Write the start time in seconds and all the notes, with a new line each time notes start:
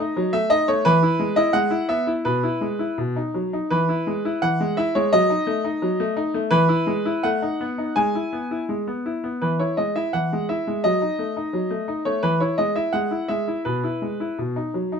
Already playing: D#5
0.00 D#4
0.16 F#3
0.33 A3 E5
0.50 D#4 D#5
0.68 A3 C#5
0.85 E3 B4
1.03 E4
1.19 G#3
1.36 E4 D#5
1.53 G#3 F#5
1.71 E4
1.89 B3 E5
2.07 E4
2.25 B2 B4
2.43 E4
2.61 G#3
2.79 E4
2.98 B2
3.16 D#4
3.34 F#3
3.53 D#4
3.70 E3 B4
3.89 E4
4.07 G#3
4.25 E4
4.42 E3 F#5
4.60 G#3
4.77 E4 E5
4.95 G#3 C#5
5.13 F#3 D#5
5.30 D#4
5.47 A3
5.65 D#4
5.82 F#3
6.00 A3
6.17 D#4
6.34 A3
6.51 E3 B4
6.69 E4
6.87 G#3
7.05 E4
7.23 A3 F#5
7.42 D#4
7.61 B3
7.78 D#4
7.96 G#3 G#5
8.15 E4
8.33 B3
8.51 E4
8.69 G#3
8.87 B3
9.06 E4
9.24 B3
9.42 E3 B4
9.59 E4 C#5
9.77 G#3 D#5
9.96 E4 E5
10.13 E3 F#5
10.33 G#3
10.49 E4 E5
10.67 G#3
10.84 F#3 D#5
11.02 D#4
11.19 A3
11.37 D#4
11.53 F#3
11.70 A3
11.88 D#4
12.05 A3 C#5
12.23 E3 B4
12.40 E4 C#5
12.58 G#3 D#5
12.76 E4 E5
12.93 G#3 F#5
13.11 E4
13.28 G#3 E5
13.48 E4
13.65 B2 B4
13.84 E4
14.02 G#3
14.20 E4
14.38 B2
14.56 D#4
14.74 F#3
14.92 D#4